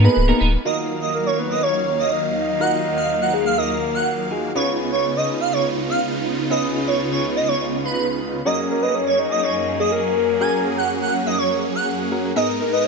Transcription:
Already playing: G#3 A#3 B3
0.04 A#3 B3 D#4 G#4 A#4 B4, muted clean electric guitar stroke
0.16 C#1, muted clean electric guitar stroke
0.28 A#3 B3 D#4 G#4 A#4
0.40 D1 B3 D#4 A#4
0.53 muted clean electric guitar stroke
0.65 D#2 D#3 F#3 A#3 D#4 F4 F#4 A#4 D#5 F5
1.02 D#5
1.14 A#4
1.26 C#5
1.39 B4
1.50 D#5
1.63 C#5
1.99 D#5
2.12 D#5
2.60 D#4 F4 F#4 A#4 F#5
2.97 F5
3.21 F#5
3.34 G#4
3.46 F5
3.58 A#4 D#5
3.94 F#5
4.31 D#4 F4 F#4 G#4
4.55 C#2 C#3 B3 C#4 D#4 F4 G#4 B4 C#5
4.92 C#5
5.16 D#5
5.41 F5
5.53 C#5
5.90 F5
6.50 C#4 F4 G#4 B4 D#5
6.87 C#5
7.12 C#5
7.36 D#5
7.48 C#5
7.85 B4
8.45 F#2 F#3 A#3 C#4 F#4 G#4 A#4 D#5
8.70 A#4
8.82 B4 D#5
8.94 C#5
9.07 C#5
9.19 D#5
9.31 D#5
9.43 C#5
9.80 G#4 D#5
9.92 A#4
10.16 A#4
10.40 C#4 F#4 G#4 A#4 G#5
10.77 F#5
11.02 F#5
11.26 D#5
11.38 C#5
11.75 F#5
12.11 C#4 F#4 G#4 A#4
12.36 G#2 G#3 B3 D#4 G#4 A#4 D#5
12.60 A#4
12.73 B4 D#5

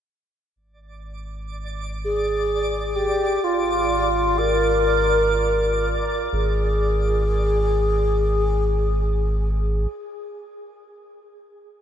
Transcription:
0.56 G#1 D5 D6
2.04 G#4
2.95 G4
3.43 G#1 F4
4.38 A#4
6.32 G#1 G#4

